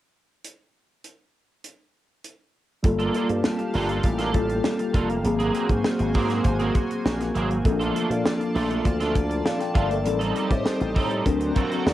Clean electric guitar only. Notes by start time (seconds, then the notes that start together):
2.84 muted clean electric guitar stroke
2.99 A#3 D4 F4 A4
3.14 A#3 D4 F4 A4
3.29 muted clean electric guitar stroke
3.44 muted clean electric guitar stroke
3.59 muted clean electric guitar stroke
3.74 A#3 D4 F4 A4
3.89 A#3 D4 F4 A4
4.04 muted clean electric guitar stroke
4.18 A#3 D4 F4 A4
4.34 muted clean electric guitar stroke
4.49 muted clean electric guitar stroke
4.64 muted clean electric guitar stroke
4.79 muted clean electric guitar stroke
4.94 A#3 D4 F4 A4
5.10 muted clean electric guitar stroke
5.25 muted clean electric guitar stroke
5.39 F#3 A#3 C4 G#4
5.54 F#3 A#3 C4 G#4
5.69 muted clean electric guitar stroke
5.84 muted clean electric guitar stroke
5.99 muted clean electric guitar stroke
6.14 F#3 A#3 C4 G#4
6.29 F#3 A#3 C4 G#4
6.44 muted clean electric guitar stroke
6.59 F#3 A#3 C4 G#4
6.75 muted clean electric guitar stroke
6.90 muted clean electric guitar stroke
7.05 muted clean electric guitar stroke
7.20 muted clean electric guitar stroke
7.35 F#3 A#3 C4 G#4
7.51 muted clean electric guitar stroke
7.65 muted clean electric guitar stroke
7.79 A3 D4 F4 A4
7.94 A3 D4 F4 A4
8.10 muted clean electric guitar stroke
8.25 muted clean electric guitar stroke
8.40 muted clean electric guitar stroke
8.55 A3 D4 F4 A4
8.70 A3 D4 F4 A4
8.85 muted clean electric guitar stroke
9.00 A3 D4 F4 A4
9.15 muted clean electric guitar stroke
9.30 muted clean electric guitar stroke
9.45 muted clean electric guitar stroke
9.60 muted clean electric guitar stroke
9.74 A3 D4 F4 A4
9.90 muted clean electric guitar stroke
10.04 muted clean electric guitar stroke
10.19 G3 C4 D#4 A4
10.34 G3 C4 D#4 A4
10.50 muted clean electric guitar stroke
10.65 muted clean electric guitar stroke
10.80 muted clean electric guitar stroke
10.94 G3 C4 D#4 A4
11.10 G3 C4 D#4 A4
11.25 muted clean electric guitar stroke
11.40 muted clean electric guitar stroke
11.55 A#3 C4 F#4 A4
11.71 A#3 C4 F#4 A4
11.86 muted clean electric guitar stroke